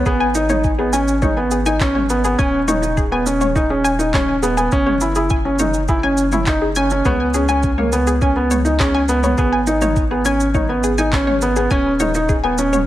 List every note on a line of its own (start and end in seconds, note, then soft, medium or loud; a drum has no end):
0.06 2.36 G#1 medium
0.06 0.26 B3 loud
0.06 0.15 G#4 medium
0.06 kick loud
0.06 shaker soft
0.20 0.27 G#5 loud
0.35 0.45 D#4 medium
0.35 shaker medium
0.49 0.69 D#4 medium
0.49 0.59 C#5 medium
0.49 mid tom medium
0.49 shaker soft
0.64 kick loud
0.64 shaker soft
0.79 0.89 B3 medium
0.79 0.88 G#4 medium
0.93 1.13 C#4 medium
0.93 0.99 G#5 loud
0.93 shaker medium
1.08 shaker soft
1.22 1.32 D#4 medium
1.22 1.31 C#5 medium
1.22 kick loud
1.22 mid tom medium
1.22 shaker soft
1.37 1.56 B3 medium
1.51 1.61 G#4 medium
1.51 shaker medium
1.66 1.76 D#4 medium
1.66 1.72 G#5 loud
1.66 shaker soft
1.81 2.00 C#4 medium
1.81 kick loud
1.81 clap medium
1.81 shaker soft
1.95 2.04 C#5 medium
1.95 mid tom medium
2.10 2.20 B3 medium
2.10 shaker medium
2.24 2.34 B3 medium
2.24 2.34 G#4 medium
2.24 shaker soft
2.38 4.69 D#1 medium
2.38 2.58 C#4 loud
2.38 2.45 G#5 loud
2.38 kick loud
2.38 shaker soft
2.68 2.78 D#4 medium
2.68 2.77 C#5 medium
2.68 mid tom medium
2.68 shaker medium
2.82 3.02 D#4 medium
2.82 shaker soft
2.97 3.06 G#4 medium
2.97 kick medium
2.97 shaker soft
3.12 3.21 B3 medium
3.12 3.18 G#5 loud
3.26 3.46 C#4 medium
3.26 shaker medium
3.41 3.50 C#5 medium
3.41 mid tom medium
3.41 shaker soft
3.56 3.65 D#4 medium
3.56 kick loud
3.56 shaker soft
3.70 3.90 C#4 medium
3.70 3.79 G#4 medium
3.84 3.91 G#5 loud
3.84 shaker medium
3.99 4.09 D#4 medium
3.99 shaker soft
4.14 4.33 C#4 medium
4.14 4.23 C#5 medium
4.14 kick loud
4.14 clap medium
4.14 mid tom medium
4.14 shaker soft
4.43 4.53 B3 medium
4.43 4.52 G#4 medium
4.43 shaker medium
4.57 4.67 B3 medium
4.57 4.63 G#5 loud
4.57 shaker soft
4.72 7.02 F#1 medium
4.72 4.92 C#4 loud
4.72 kick loud
4.72 shaker soft
4.86 4.96 C#5 medium
4.86 mid tom medium
5.01 5.11 E4 medium
5.01 shaker medium
5.15 5.36 E4 medium
5.15 5.25 G#4 medium
5.15 shaker soft
5.30 5.36 G#5 loud
5.30 kick loud
5.30 shaker soft
5.45 5.55 C#4 medium
5.59 5.79 D#4 medium
5.59 5.69 C#5 medium
5.59 mid tom medium
5.59 shaker medium
5.74 shaker soft
5.88 5.99 E4 medium
5.88 5.98 G#4 medium
5.88 kick loud
5.88 shaker soft
6.03 6.23 C#4 medium
6.03 6.09 G#5 loud
6.17 shaker medium
6.32 6.42 E4 medium
6.32 6.42 C#5 medium
6.32 mid tom medium
6.32 shaker soft
6.46 6.67 D#4 medium
6.46 kick loud
6.46 clap medium
6.46 shaker soft
6.62 6.71 G#4 medium
6.76 6.86 C#4 medium
6.76 6.82 G#5 loud
6.76 shaker medium
6.90 7.01 C#4 medium
6.90 shaker soft
7.05 9.35 C#2 medium
7.05 7.25 B3 loud
7.05 7.14 C#5 medium
7.05 kick loud
7.05 mid tom medium
7.05 shaker soft
7.34 7.44 C#4 medium
7.34 7.43 G#4 medium
7.34 shaker medium
7.49 7.69 C#4 medium
7.49 7.55 G#5 loud
7.49 shaker soft
7.63 kick loud
7.63 shaker soft
7.78 7.88 A#3 medium
7.78 7.87 C#5 medium
7.78 mid tom medium
7.92 8.12 B3 medium
7.92 shaker medium
8.07 8.16 G#4 medium
8.07 shaker soft
8.21 8.31 C#4 medium
8.21 8.28 G#5 loud
8.21 kick loud
8.21 shaker soft
8.36 8.56 B3 medium
8.51 8.60 C#5 medium
8.51 mid tom medium
8.51 shaker medium
8.65 8.75 D#4 medium
8.65 shaker soft
8.80 8.99 C#4 medium
8.80 8.89 G#4 medium
8.80 kick loud
8.80 clap medium
8.80 shaker soft
8.95 9.01 G#5 loud
9.09 9.19 B3 medium
9.09 shaker medium
9.23 9.33 B3 medium
9.23 9.33 C#5 medium
9.23 mid tom medium
9.23 shaker soft
9.38 11.68 G#1 medium
9.38 9.58 B3 loud
9.38 9.48 G#4 medium
9.38 kick loud
9.38 shaker soft
9.53 9.59 G#5 loud
9.67 9.77 D#4 medium
9.67 shaker medium
9.81 10.01 D#4 medium
9.81 9.91 C#5 medium
9.81 mid tom medium
9.81 shaker soft
9.96 kick loud
9.96 shaker soft
10.11 10.21 B3 medium
10.11 10.20 G#4 medium
10.25 10.45 C#4 medium
10.25 10.32 G#5 loud
10.25 shaker medium
10.40 shaker soft
10.54 10.64 D#4 medium
10.54 10.64 C#5 medium
10.54 kick loud
10.54 mid tom medium
10.54 shaker soft
10.69 10.88 B3 medium
10.84 10.93 G#4 medium
10.84 shaker medium
10.98 11.08 D#4 medium
10.98 11.04 G#5 loud
10.98 shaker soft
11.13 11.33 C#4 medium
11.13 kick loud
11.13 clap medium
11.13 shaker soft
11.27 11.36 C#5 medium
11.27 mid tom medium
11.42 11.52 B3 medium
11.42 shaker medium
11.56 11.67 B3 medium
11.56 11.66 G#4 medium
11.56 shaker soft
11.71 12.87 D#1 medium
11.71 11.91 C#4 loud
11.71 11.77 G#5 loud
11.71 kick loud
11.71 shaker soft
12.00 12.10 D#4 medium
12.00 12.09 C#5 medium
12.00 mid tom medium
12.00 shaker medium
12.14 12.34 D#4 medium
12.14 shaker soft
12.29 12.38 G#4 medium
12.29 kick loud
12.29 shaker soft
12.44 12.54 B3 medium
12.44 12.50 G#5 loud
12.58 12.78 C#4 medium
12.58 shaker medium
12.73 12.82 C#5 medium
12.73 mid tom medium
12.73 shaker soft